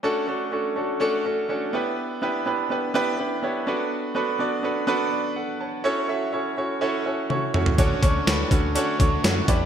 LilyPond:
<<
  \new Staff \with { instrumentName = "Grand piano" } { \time 4/4 \key d \major \tempo 4 = 124 << { r1 | r1 | r2 r8 <fis' d''>8 <a' fis''>8 <cis'' a''>8~ | <cis'' a''>8 r2. r8 |
r1 | } \\ { <a cis' d' fis' a'>8 <a cis' d' fis' a'>8 <a cis' d' fis' a'>8 <a cis' d' fis' a'>8 <a cis' d' fis' a'>8 <a cis' d' fis' a'>8 <a cis' d' fis' a'>8 <b d' e' g' b'>8~ | <b d' e' g' b'>8 <b d' e' g' b'>8 <b d' e' g' b'>8 <b d' e' g' b'>8 <b d' e' g' b'>8 <b d' e' g' b'>8 <b d' e' g' cis''>8 <b d' fis' a' b'>8~ | <b d' fis' a' b'>8 <b d' fis' a' b'>8 <b d' fis' a' d''>8 <b d' fis' a' b'>8 <b d' fis' a' b'>8 r4. | <cis' e' fis' a' cis''>8 <cis' e' fis' a' e''>8 <cis' e' fis' a' cis''>8 <cis' e' fis' a' cis''>8 <cis' e' fis' a' cis''>8 <cis' e' fis' a' cis''>8 <cis' e' fis' a' cis''>8 <cis' e' fis' a' cis''>8 |
<cis' d' fis' a' cis''>8 <cis' d' fis' a' cis''>8 <cis' d' fis' a' b'>8 <cis' d' fis' a' cis''>8 <cis' d' fis' a' cis''>8 <cis' d' fis' a' cis''>8 <cis' d' fis' a' cis''>8 <d' e' g' b' d''>8 | } >> }
  \new Staff \with { instrumentName = "Overdriven electric guitar" } { \time 4/4 \key d \major r1 | r1 | r1 | r1 |
<d a d'>4 <d a d'>4 <d a d'>4. <e b e'>8 | }
  \new Staff \with { instrumentName = "FM bass" } { \clef bass \time 4/4 \key d \major r1 | r1 | r1 | r1 |
d,8 d,8 d,8 d,8. r16 d,8 fis,8 e,8 | }
  \new DrumStaff \with { instrumentName = "Drums" } \drummode { \time 4/4 r4 r4 r4 r4 | r4 r4 r4 r4 | r4 r4 r4 r4 | r4 r4 r4 tommh8 toml16 tomfh16 |
<hh bd>8 <hh bd>8 <hh sn tamb>8 <hh bd>8 hh8 <hh bd>8 <hh sn tamb>8 <hh bd>8 | }
>>